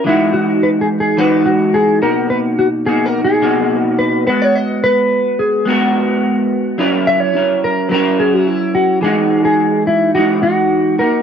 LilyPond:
<<
  \new Staff \with { instrumentName = "Clean electric guitar" } { \time 4/4 \key e \lydian \tempo 4 = 107 << { e'8 fis'8 \tuplet 3/2 { b'8 gis'8 gis'8 } b'8 fis'8 gis'8 ais'8 | b'8 fis'8 \tuplet 3/2 { gis'8 ais'8 gis'8~ } gis'8. r16 b'8 b'16 cis''16 | dis''8 b'4 gis'8 r2 | r8 e''16 cis''8. ais'8 ais'8 gis'16 fis'16 e'4 |
r1 | } \\ { r1 | r1 | r1 | r2. r8 fis'8 |
gis'8. gis'8. e'8 fis'8 fis'4 ais'8 | } >> }
  \new Staff \with { instrumentName = "Clean electric guitar" } { \time 4/4 \key e \lydian <e gis dis' fis'>2 <e gis dis' fis'>4. <b, ais dis' fis'>8~ | <b, ais dis' fis'>4 <b, ais dis' fis'>4 <b, ais dis' fis'>4. <gis b fis'>8~ | <gis b fis'>2 <gis b fis' ais'>2 | <fis cis' e' ais'>4 <fis cis' e' ais'>4 <fis cis' e' ais'>2 |
<e gis dis' fis'>2 <e gis dis' fis'>4. <ais dis' fis'>8 | }
>>